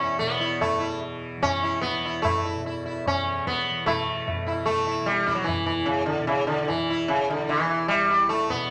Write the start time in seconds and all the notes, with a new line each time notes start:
Already playing: E2 B2 E3 C#4
0.00 E4
0.19 B2 B3, tabla ke
0.40 E4
0.61 A3, tabla na, tabla ge
0.78 E3 E4
1.37 E3
1.43 C#4, tabla tin, tabla ge
1.63 E4
1.81 B3, tabla ke
1.95 E2
2.05 E4
2.22 A3, tabla na, tabla ge
2.45 E4
2.54 B2
2.66 E4
2.85 E4
3.06 C#4, tabla tin, tabla ge
3.11 E3
3.47 B3, tabla ke
3.71 E3
3.86 B2 A3 E4, tabla na, tabla ge
4.28 tabla tin, tabla ge
4.46 E3 E4, tabla na
4.66 A3, tabla tin, tabla ge
4.87 E4
5.02 E3
5.06 G3, tabla te
5.18 tabla te
5.26 E4, tabla ke
5.35 F#3, tabla te
5.44 E3, tabla na, tabla ge
5.59 E2
5.66 E3
5.86 C#3, tabla tin, tabla ge
6.06 D3
6.19 B2
6.27 C#3, tabla na
6.47 D3
6.68 E3, tabla tin, tabla ge
6.77 E3
6.90 E4
7.08 C#3, tabla na
7.30 D3, tabla na
7.35 E3
7.49 E3, tabla tin
7.70 tabla na
7.88 G3, tabla tin
7.94 E2
8.10 E4
8.29 A3, tabla te
8.40 tabla te
8.50 B2 B3, tabla ke
8.60 tabla te